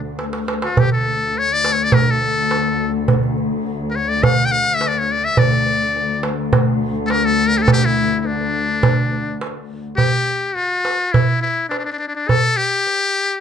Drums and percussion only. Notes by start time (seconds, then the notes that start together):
0.19 darbuka tek
0.33 darbuka ka
0.48 darbuka tek
0.62 darbuka ka
0.77 darbuka dum
0.92 darbuka ka
1.07 darbuka ka
1.35 darbuka ka
1.65 darbuka tek
1.92 darbuka dum
2.51 darbuka tek
2.65 darbuka ka
3.08 darbuka dum
3.23 darbuka ka
3.38 darbuka ka
3.67 darbuka ka
4.23 darbuka dum
4.81 darbuka tek
4.95 darbuka ka
5.37 darbuka dum
5.52 darbuka ka
5.66 darbuka ka
5.96 darbuka ka
6.23 darbuka tek
6.53 darbuka dum
7.10 darbuka tek
7.25 darbuka ka
7.68 darbuka dum
7.97 darbuka ka
8.11 darbuka ka
8.25 darbuka ka
8.41 darbuka ka
8.83 darbuka dum
9.12 darbuka ka
9.41 darbuka tek
9.98 darbuka dum
10.56 darbuka ka
10.85 darbuka tek
11.14 darbuka dum
11.44 darbuka ka
11.71 darbuka tek
11.87 darbuka ka
12.29 darbuka dum
12.87 darbuka ka